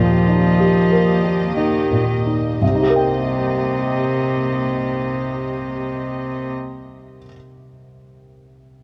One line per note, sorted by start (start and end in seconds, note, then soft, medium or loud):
0.00 2.57 D#2 soft
0.00 0.46 A#2 soft
0.00 1.53 F3 medium
0.00 2.61 A#3 soft
0.00 2.61 G4 soft
0.00 2.62 D#5 soft
0.28 0.78 D#4 soft
0.60 1.11 G4 soft
0.92 1.44 A#4 soft
1.24 1.77 G4 soft
1.57 2.08 D#3 soft
1.57 2.12 D#4 soft
1.91 2.48 A#2 soft
2.26 2.61 D#4 soft
2.60 7.18 C2 soft
2.60 6.48 C3 soft
2.60 6.48 A#3 soft
2.60 6.49 G4 soft
2.60 6.49 D#5 soft
2.68 7.21 C3 soft
2.75 7.25 D#4 soft
2.82 7.29 G4 soft
2.90 7.32 A#4 soft
2.96 7.35 G5 soft